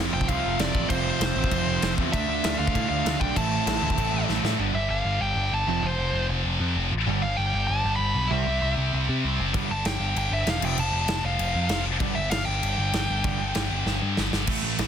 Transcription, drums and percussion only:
0.21 kick
0.29 kick, crash
0.59 snare, crash
0.75 kick
0.90 kick, crash
1.21 snare, crash
1.44 kick
1.51 kick, crash
1.82 snare, crash
1.98 kick
2.13 kick, crash
2.44 snare, crash
2.68 kick
2.75 kick, crash
3.06 snare, crash
3.21 kick
3.36 kick, crash
3.67 snare, crash
3.90 kick
3.98 kick, crash
4.29 snare
4.45 snare
9.54 kick, crash
9.85 snare, crash
10.16 crash
10.47 snare, crash
10.62 crash
10.78 crash
11.08 snare, crash
11.39 crash
11.69 snare, crash
12.00 kick, crash
12.31 snare, crash
12.63 crash
12.93 snare, crash
13.24 kick, crash
13.55 snare, crash
13.87 snare
14.17 snare
14.33 snare
14.47 kick, crash
14.79 snare, crash

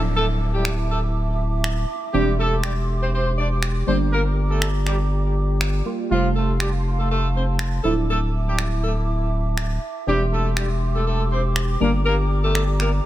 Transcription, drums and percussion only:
0.65 finger snap
1.64 finger snap
2.64 finger snap
3.63 finger snap
4.62 finger snap
4.87 finger snap
5.61 finger snap
6.60 finger snap
7.59 finger snap
8.59 finger snap
9.58 finger snap
10.57 finger snap
11.56 finger snap
12.55 finger snap
12.80 finger snap

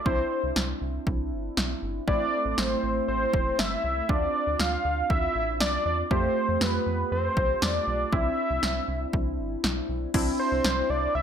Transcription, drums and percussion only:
0.06 kick
0.56 snare
1.07 kick
1.57 snare
2.08 kick
2.58 snare
3.34 kick
3.59 snare
4.09 kick
4.59 snare
5.10 kick
5.60 snare
6.11 kick
6.61 snare
7.37 kick
7.62 snare
8.13 kick
8.63 snare
9.13 kick
9.64 snare
10.14 kick, crash
10.64 snare

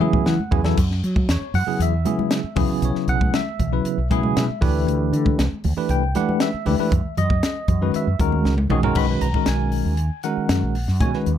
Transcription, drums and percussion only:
0.02 high conga
0.13 kick, high conga
0.26 snare, high conga
0.39 high conga
0.52 kick, low conga
0.65 snare, low conga
0.77 kick, closed hi-hat, crash
0.91 snare
1.04 closed hi-hat
1.16 kick, high conga
1.29 snare, closed hi-hat
1.54 open hi-hat, low conga
1.80 closed hi-hat
2.05 closed hi-hat, high conga
2.19 high conga
2.31 snare, closed hi-hat
2.56 kick, open hi-hat, high conga, low conga
2.82 closed hi-hat
2.95 snare
3.08 closed hi-hat
3.21 kick, high conga
3.34 snare, closed hi-hat
3.59 kick, closed hi-hat, low conga
3.85 closed hi-hat
4.11 kick, closed hi-hat, high conga
4.23 high conga
4.37 snare, closed hi-hat
4.62 kick, open hi-hat, high conga, low conga
4.88 closed hi-hat
5.13 closed hi-hat
5.25 kick, high conga
5.39 snare, closed hi-hat
5.64 open hi-hat, low conga
5.89 closed hi-hat
6.15 closed hi-hat, high conga
6.29 high conga
6.40 snare, closed hi-hat
6.66 open hi-hat, high conga, low conga
6.92 kick, closed hi-hat, low conga
7.17 closed hi-hat, low conga
7.30 kick, high conga
7.43 snare, closed hi-hat
7.68 kick, closed hi-hat, low conga
7.94 closed hi-hat
8.19 kick, closed hi-hat, high conga
8.32 high conga
8.45 snare
8.57 high tom, high conga
8.70 mid tom, high conga, low conga
8.83 floor tom
8.95 kick, crash
9.21 closed hi-hat
9.34 kick
9.46 snare, closed hi-hat
9.72 open hi-hat
9.97 closed hi-hat
10.23 closed hi-hat
10.49 snare, closed hi-hat
10.75 open hi-hat
10.88 snare
11.01 kick, closed hi-hat
11.13 snare
11.26 closed hi-hat

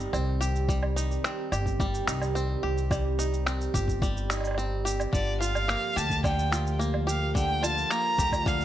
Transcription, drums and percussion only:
0.00 cabasa
0.13 cabasa, low woodblock
0.42 cabasa
0.55 cabasa
0.69 kick, cabasa
0.83 low woodblock
0.97 cabasa
1.11 cabasa
1.24 finger snap, cabasa
1.52 cabasa, low woodblock
1.66 kick, cabasa
1.80 kick, cabasa
1.94 cabasa
2.07 finger snap, cabasa
2.22 cabasa, low woodblock
2.36 cabasa
2.78 cabasa
2.91 kick, cabasa, low woodblock
3.19 cabasa
3.33 cabasa
3.47 finger snap, cabasa
3.61 cabasa
3.74 kick, cabasa
3.88 kick, cabasa
4.02 kick, cabasa
4.17 cabasa
4.30 finger snap, cabasa, low woodblock
4.33 low woodblock
4.37 low woodblock
4.40 low woodblock
4.44 cabasa, low woodblock
4.47 low woodblock
4.51 low woodblock
4.54 low woodblock
4.59 cabasa
4.86 cabasa
5.00 cabasa, low woodblock
5.13 kick, cabasa
5.42 cabasa
5.55 cabasa, low woodblock
5.69 finger snap, cabasa
5.97 cabasa
6.10 kick, cabasa
6.24 kick, cabasa, low woodblock
6.39 cabasa
6.52 finger snap, cabasa
6.67 cabasa
6.81 cabasa
6.94 low woodblock
7.09 cabasa
7.35 kick, cabasa
7.63 cabasa, low woodblock
7.78 cabasa
7.91 finger snap, cabasa
8.18 kick, cabasa
8.32 kick, cabasa, low woodblock
8.46 kick, cabasa
8.61 cabasa

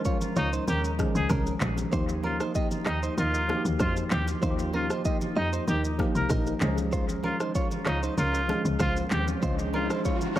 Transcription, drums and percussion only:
0.05 kick, shaker
0.21 high conga, shaker
0.36 shaker
0.53 shaker
0.68 low conga, shaker
0.85 shaker
0.99 kick, cross-stick, high conga, shaker
1.15 shaker
1.30 kick, cross-stick, high conga, low conga, shaker
1.47 shaker
1.61 clap, low conga, shaker
1.78 high conga, shaker
1.93 kick, shaker
2.09 high conga, shaker
2.24 high conga
2.40 cross-stick, shaker
2.55 kick, shaker
2.71 high conga, shaker
2.86 cross-stick, clap
3.03 shaker
3.18 low conga, shaker
3.34 shaker
3.49 cross-stick, high conga
3.65 shaker
3.80 kick, cross-stick, high conga, low conga, shaker
3.97 shaker
4.11 clap, low conga, shaker
4.28 high conga, shaker
4.43 kick, shaker
4.59 high conga, shaker
4.74 high conga
4.90 cross-stick, shaker
5.05 kick, shaker
5.21 high conga, shaker
5.53 shaker
5.68 low conga, shaker
5.85 shaker
5.99 kick, cross-stick, high conga
6.15 shaker
6.30 kick, cross-stick, high conga, low conga, shaker
6.47 shaker
6.61 clap, low conga, shaker
6.78 high conga, shaker
6.93 kick, shaker
7.09 high conga, shaker
7.24 high conga
7.40 cross-stick, shaker
7.55 kick, shaker
7.71 high conga, shaker
7.86 cross-stick, clap
8.03 shaker
8.18 low conga, shaker
8.34 shaker
8.49 cross-stick, high conga
8.65 shaker
8.79 kick, cross-stick, high conga, low conga, shaker
8.97 shaker
9.11 clap, low conga, shaker
9.28 high conga, shaker
9.43 kick, shaker
9.59 high conga, shaker
9.74 high conga
9.90 cross-stick, shaker
10.05 kick, shaker
10.21 high conga, shaker
10.36 cross-stick, shaker

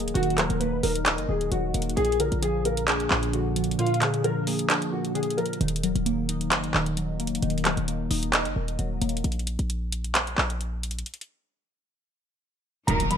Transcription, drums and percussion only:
0.00 closed hi-hat
0.08 closed hi-hat
0.15 closed hi-hat
0.23 closed hi-hat
0.30 closed hi-hat
0.38 clap, closed hi-hat
0.50 closed hi-hat
0.61 closed hi-hat
0.83 open hi-hat
0.95 closed hi-hat
1.06 clap, closed hi-hat
1.18 closed hi-hat
1.41 closed hi-hat
1.52 closed hi-hat
1.74 closed hi-hat
1.82 closed hi-hat
1.90 closed hi-hat
1.97 closed hi-hat
2.05 closed hi-hat
2.12 closed hi-hat
2.20 closed hi-hat
2.32 closed hi-hat
2.43 closed hi-hat
2.65 closed hi-hat
2.77 closed hi-hat
2.88 clap, closed hi-hat
3.00 closed hi-hat
3.11 clap
3.23 closed hi-hat
3.33 closed hi-hat
3.56 closed hi-hat
3.64 closed hi-hat
3.71 closed hi-hat
3.79 closed hi-hat
3.87 closed hi-hat
3.94 closed hi-hat
4.02 clap, closed hi-hat
4.14 closed hi-hat
4.24 closed hi-hat
4.47 open hi-hat
4.59 closed hi-hat
4.70 clap, closed hi-hat
4.82 closed hi-hat
5.05 closed hi-hat
5.15 closed hi-hat
5.23 closed hi-hat
5.30 closed hi-hat
5.38 closed hi-hat
5.46 closed hi-hat
5.53 closed hi-hat
5.61 closed hi-hat
5.68 closed hi-hat
5.76 closed hi-hat
5.83 closed hi-hat
5.96 closed hi-hat
6.06 closed hi-hat
6.29 closed hi-hat
6.41 closed hi-hat
6.52 clap, closed hi-hat
6.64 closed hi-hat
6.74 clap
6.86 closed hi-hat
6.97 closed hi-hat
7.20 closed hi-hat
7.27 closed hi-hat
7.35 closed hi-hat
7.42 closed hi-hat
7.50 closed hi-hat
7.58 closed hi-hat
7.65 clap, closed hi-hat
7.77 closed hi-hat
7.88 closed hi-hat
8.11 open hi-hat
8.23 closed hi-hat
8.33 clap, closed hi-hat
8.45 closed hi-hat
8.68 closed hi-hat
8.79 closed hi-hat
9.02 closed hi-hat
9.09 closed hi-hat
9.17 closed hi-hat
9.24 closed hi-hat
9.32 closed hi-hat
9.39 closed hi-hat
9.47 closed hi-hat
9.59 closed hi-hat
9.70 closed hi-hat
9.92 closed hi-hat
10.04 closed hi-hat
10.15 clap, closed hi-hat
10.27 closed hi-hat
10.38 clap
10.50 closed hi-hat
10.61 closed hi-hat
10.83 closed hi-hat
10.91 closed hi-hat
10.99 closed hi-hat
11.06 closed hi-hat
11.14 closed hi-hat
11.21 closed hi-hat
12.88 closed hi-hat
13.00 closed hi-hat
13.11 closed hi-hat

